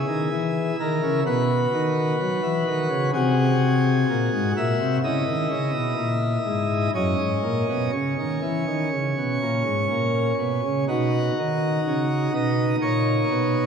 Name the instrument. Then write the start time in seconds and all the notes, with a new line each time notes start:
pipe organ
Already playing: E4 G#4
0.08 D#3
0.31 E3
0.80 D#3 A#4
1.03 C#3
1.26 B2 F#4 B4
1.73 D#3
2.20 F#3
2.43 E3
2.67 D#3
2.90 C#3
3.13 C3 F#4 G#4
4.10 A#2
4.33 G#2
4.57 A#2 E5
4.80 C3
5.03 C#3 E4 D#5
5.27 D#3
5.51 C#3
5.73 B2
5.97 A#2
6.46 G#2
6.95 F#2 C#4 D#5
7.19 G#2
7.43 A#2
7.69 B2
7.93 C#3 C#5
8.18 D#3
8.42 E3
8.67 D#3
8.93 C#3
9.18 B2
9.42 A#2
9.66 G#2
9.91 A#2
10.39 B2
10.64 C#3
10.88 B2 D#4 F#4
11.38 D#3
11.87 C#3
12.34 B2 D#5
12.81 A#2 C#5
13.30 B2